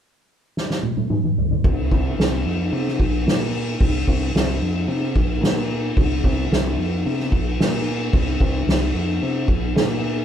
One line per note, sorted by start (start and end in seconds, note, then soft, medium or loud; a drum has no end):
0.57 snare medium
0.70 snare medium
0.83 high tom medium
0.97 high tom medium
1.10 mid tom loud
1.24 mid tom medium
1.38 floor tom medium
1.51 floor tom medium
1.64 1.89 C2 medium
1.64 kick loud
1.64 ride medium
1.91 2.16 C2 loud
1.91 kick medium
1.91 ride medium
2.19 2.43 C2 medium
2.19 snare loud
2.19 ride medium
2.46 2.70 F2 medium
2.46 ride medium
2.73 2.97 C3 medium
2.73 ride medium
2.88 snare soft
2.99 3.24 A#1 medium
2.99 kick medium
2.99 ride medium
3.27 3.75 A#2 medium
3.27 snare loud
3.27 ride loud
3.54 ride medium
3.81 4.05 C2 medium
3.81 kick loud
3.81 ride loud
4.08 4.32 C2 medium
4.08 kick medium
4.08 ride medium
4.35 4.59 C2 medium
4.35 snare loud
4.35 ride medium
4.62 4.86 F2 loud
4.62 ride medium
4.88 5.13 C3 medium
4.88 ride medium
5.15 5.40 A#1 medium
5.15 kick medium
5.15 ride medium
5.41 5.91 A#2 medium
5.41 snare loud
5.41 ride medium
5.70 ride medium
5.97 6.21 C2 medium
5.97 kick loud
5.97 ride medium
6.24 6.49 C2 loud
6.24 kick medium
6.24 ride medium
6.51 6.76 C2 medium
6.51 snare loud
6.51 ride medium
6.78 7.03 F2 medium
6.78 ride medium
7.05 7.30 C3 medium
7.05 ride medium
7.20 snare soft
7.32 7.56 A#1 medium
7.32 kick medium
7.32 ride medium
7.59 8.09 A#2 medium
7.59 snare loud
7.59 ride loud
7.87 ride medium
8.13 8.38 C2 medium
8.13 kick loud
8.13 ride medium
8.40 8.65 C2 medium
8.40 kick medium
8.40 ride medium
8.66 8.91 C2 medium
8.66 snare loud
8.66 ride medium
8.94 9.19 F2 medium
8.94 ride medium
9.21 9.47 C3 medium
9.21 ride medium
9.48 9.73 A#1 medium
9.48 kick medium
9.48 ride medium
9.75 10.25 A#2 medium
9.75 snare loud
9.75 ride loud
10.02 ride medium